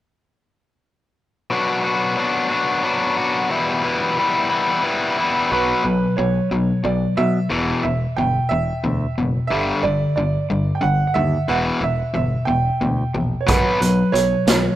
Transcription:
1.50 B2 F#3 B3 D4 F#4
1.84 B3 D4 F#4
2.17 F#3 B3 D4 F#4
2.49 B3 D4 F#4
2.83 F#3 B3 D4 F#4
3.17 B3 D4 F#4
3.50 E2 B2 E3 G3 B3 E4
3.84 E3 G3 B3 E4
4.17 E3 G3 B3 E4
4.49 E3 G3 B3 E4
4.83 E3 G3 B3 E4
5.17 E3 G3 B3 E4
5.51 B1 B2 F#3 B3 B4
5.84 B1 B2 F#3 B4
6.17 B1 B2 F#3 C#5
6.51 B1 B2 F#3
6.84 B1 B2 F#3 D5
7.17 B2 F#3 E5
7.50 E1 E2 B2 E3
7.83 E1 E2 B2 E5
8.17 G1 E2 B2 G5
8.49 E1 E2 B2 E5
8.84 D2 E2 B2
9.18 F#1 E2 B2
9.47 G1 G2 D3 E5
9.52 G3
9.83 G1 G2 D3 D5
10.16 G1 G2 D3 D5
10.50 G1 G2 D3
10.75 G5
10.81 G1 G2 D3 F#5
11.07 F#5
11.14 D#2 G2 D3 E5
11.48 E1 E2 B2 E3 F#5
11.81 E1 E2 B2 E5
12.14 G1 E2 B2 E5
12.45 E1 E2 B2 G5
12.81 D2 E2 B2
13.14 A#1 E2 B2
13.41 C#5
13.46 B1 B2 F#3 B3 B4, kick, closed hi-hat
13.80 B1 B2 F#3 B4, closed hi-hat
14.12 B1 B2 F#3 C#5, closed hi-hat
14.47 B1 B2 F#3, snare, closed hi-hat

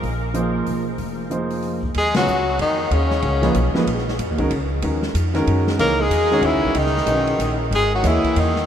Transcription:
0.03 A#1, open hi-hat
0.34 F3 A#3 D#4 G#4 C5, closed hi-hat
0.66 B1, open hi-hat
0.98 F1, open hi-hat
1.30 F3 A#3 D#4 G#4 C5, closed hi-hat
1.50 open hi-hat
1.62 open hi-hat
1.83 kick
1.94 D#2 G#3 G#4, ride
2.14 C#3 F#3 B3 F4 F#4 G#4, snare, ride
2.27 C#2, hi-hat pedal
2.59 F2 D#3 D#4, ride
2.91 D#2 C#3 C#4, ride
3.11 snare
3.22 C#2, ride
3.42 F3 A#3 D#4 G#4 B4, snare, ride
3.55 B1, hi-hat pedal, ride
3.74 F3 A#3 D#4 G#4 B4, snare
3.86 A#1, ride
3.98 snare
4.08 snare
4.19 F2, hi-hat pedal, ride
4.30 D#2
4.38 C#2 D#3 G#3 C#4 F#4 A#4, kick, ride
4.51 C#2, ride
4.82 D#2 D#3 G#3 C#4 F#4 A#4, ride
5.03 snare
5.14 F2, hi-hat pedal, ride
5.34 D#3 G#3 C#4 F#4 A#4, snare, ride
5.47 F#2, ride
5.67 snare
5.78 C#2 E3 A#3 D#4 G#4 A#4 C#5, ride
6.00 G#3 G#4
6.10 E2, hi-hat pedal, ride
6.31 D#3 G#3 C#4 F#4 C#5, snare
6.42 D#2 E3, ride
6.46 E4
6.54 C#2
6.65 B1
6.75 C#2 D#3, ride
6.79 D#4
6.86 snare
6.97 snare
7.06 B1 D#3 G#3 C#4 F#4 B4, hi-hat pedal, ride
7.27 ride
7.39 A#1, hi-hat pedal, ride
7.71 G#1 G#3, ride
7.75 G#4
7.94 F#3 F#4
8.02 D#2 E3 A#3 G#4 C#5 D#5, snare, hi-hat pedal, ride
8.07 E4
8.24 muted upright bass stroke, kick, ride
8.36 E2 D#3 D#4, ride
8.56 snare

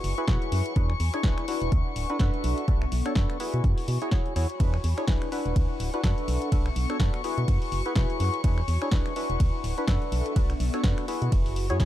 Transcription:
Already playing: B3 E4 F#4 G#4 B4 C#5 C#6
0.04 F#1, open hi-hat
0.18 E4 F#4 G#4 B4, closed hi-hat
0.24 G#5 B5, snare
0.28 B2 E4 F#4 G#4 B4, kick, closed hi-hat
0.42 closed hi-hat
0.52 F#2, open hi-hat
0.66 closed hi-hat
0.76 E2 D4 E4 G#4 B4, kick, closed hi-hat
0.90 finger snap
1.00 E2 F#5, open hi-hat
1.10 B4
1.14 D4 E4 G#4 C#5, finger snap, closed hi-hat
1.23 B1 D4 E4 G#4 B4, kick, snare, closed hi-hat
1.38 finger snap, closed hi-hat
1.48 D4 E4 F#4 B4, open hi-hat
1.62 E1, closed hi-hat
1.72 D2 D4, kick, closed hi-hat
1.79 A4
1.96 D1, open hi-hat
2.05 E5
2.10 D4 E4 F#4 B4, closed hi-hat
2.19 F#2 D4 F#4 A4 B4, kick, snare, closed hi-hat
2.34 closed hi-hat
2.44 B1 B3, open hi-hat
2.58 closed hi-hat
2.68 B1 D4 F#4 A4 B4, kick, closed hi-hat
2.82 finger snap
2.92 B1, open hi-hat
2.99 F#4 D5
3.06 D4 F#4 A4 C#5, finger snap, closed hi-hat
3.15 F#2 D4 F#4 A4 B4, kick, snare, closed hi-hat
3.30 finger snap, closed hi-hat
3.40 E4 F#4 G#4 B4, open hi-hat
3.54 B2, closed hi-hat
3.64 F#2, kick, closed hi-hat
3.78 open hi-hat
3.88 B2, open hi-hat
4.02 E4 F#4 G#4 C#5, closed hi-hat
4.08 C#5 G#5 B5, snare
4.12 E4 F#4 G#4 C#5, kick, closed hi-hat
4.26 closed hi-hat
4.36 E2 E4 F#4 G#4 C#5, open hi-hat
4.50 closed hi-hat
4.60 E2 D4 E4 G#4 B4 C#6, kick, closed hi-hat, ride
4.74 finger snap
4.84 E2, open hi-hat
4.98 D4 E4 G#4 C#5, finger snap, closed hi-hat
5.04 G#4 B4 F#5, kick, snare, closed hi-hat, ride
5.08 B1 D4 E4 B4
5.22 finger snap, closed hi-hat
5.32 D4 E4 F#4 B4, open hi-hat
5.46 E1, closed hi-hat
5.56 D2 D4, kick, closed hi-hat, ride
5.80 D1, open hi-hat
5.89 A4 E5
5.94 D4 E4 F#4 B4, closed hi-hat
6.04 F#2 D4 F#4 A4 B4, kick, snare, closed hi-hat, ride
6.18 closed hi-hat
6.28 B1 B3, open hi-hat
6.42 closed hi-hat
6.52 B1 D4 F#4 A4 B4, kick, closed hi-hat, ride
6.66 finger snap
6.76 B1, open hi-hat
6.83 F#4 D5
6.90 D4 F#4 A4 C#5, finger snap, closed hi-hat
7.00 F#2 D4 F#4 B4, kick, snare, closed hi-hat, ride
7.14 finger snap, closed hi-hat
7.24 E4 F#4 G#4 B4, open hi-hat
7.38 B2, closed hi-hat
7.48 F#2, kick, closed hi-hat, ride
7.62 open hi-hat
7.72 F#1, open hi-hat
7.86 E4 F#4 G#4 B4 C#5, closed hi-hat
7.92 B2 E4 F#4 G#4 B4 G#5 B5, kick, snare, closed hi-hat, ride
8.10 closed hi-hat
8.20 F#2, open hi-hat
8.34 closed hi-hat
8.44 E2 D4 E4 G#4 B4, kick, closed hi-hat, ride
8.58 finger snap
8.68 E2, open hi-hat
8.82 D4 E4 G#4 C#5, finger snap, closed hi-hat
8.88 B4 F#5, snare, closed hi-hat, ride
8.92 B1 D4 E4 G#4 B4, kick
9.06 finger snap, closed hi-hat
9.16 D4 E4 F#4 B4, open hi-hat
9.30 E1, closed hi-hat
9.40 D2 D4, kick, closed hi-hat, ride
9.63 D1 A4, open hi-hat
9.74 E5
9.78 D4 E4 F#4 B4, closed hi-hat
9.88 F#2 D4 F#4 A4 B4, kick, snare, closed hi-hat, ride
10.02 closed hi-hat
10.12 B1 B3, open hi-hat
10.26 closed hi-hat
10.31 D5
10.36 B1 D4 F#4 A4 B4, kick, closed hi-hat, ride
10.50 finger snap, closed hi-hat
10.60 B1, open hi-hat
10.67 F#4
10.74 D4 F#4 A4 C#5, finger snap, closed hi-hat
10.84 F#2 D4 F#4 B4, kick, snare, closed hi-hat, ride
10.98 finger snap, closed hi-hat
11.08 E4 F#4 G#4 B4, open hi-hat
11.22 B2, closed hi-hat
11.32 F#1, kick, closed hi-hat, ride
11.46 G#5, open hi-hat
11.55 B5, open hi-hat
11.70 F#2 E4 F#4 G#4 C#5, closed hi-hat
11.76 E4 F#4 G#4 C#5, kick, snare, closed hi-hat, ride

